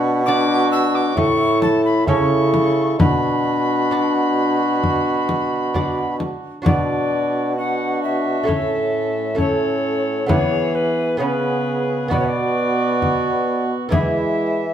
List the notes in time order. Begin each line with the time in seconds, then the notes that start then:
Already playing: B2 D4 F#4
0.25 D4 F#4 D5 D6
0.72 E6
0.95 D6
1.15 A2 E4 A4 C#6, frame drum
1.62 A5, frame drum
1.85 B5
2.06 C#3 E4 A4 C#5 C#6, frame drum
2.54 frame drum
2.98 B2 D4 F#4 B5, frame drum
3.91 D4 F#4 D5
4.83 frame drum
5.29 frame drum
5.74 D4 F#4 D5, frame drum
6.20 frame drum
6.62 B2 D4 F#4 D5
6.66 B2, frame drum
7.56 D4 F#4 F#5
8.03 E5
8.43 A2 A3 A4 C#5
8.48 A2 C#4, frame drum
9.35 A3 C#4 A4 C#5, frame drum
9.39 A4
10.26 E3 B3 G#4 B4 C#5, frame drum
10.75 B4
11.17 C#3 B3 G#4 B4 C#5
11.23 B4
12.08 B2 B3 F#4 B4 D5, frame drum
12.19 C#5
12.25 D5 E5
13.02 frame drum
13.89 E3 G#3 B3 E4 G#4 E5, frame drum
13.93 E3